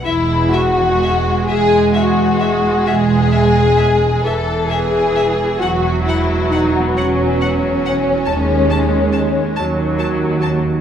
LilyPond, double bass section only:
\new Staff \with { instrumentName = "Double bass section" } { \clef bass \time 12/8 \key e \major \tempo 4. = 44 e,,4. e,,4. e,,4. e,,4. | e,,4. e,,4. dis,4. dis,4. | }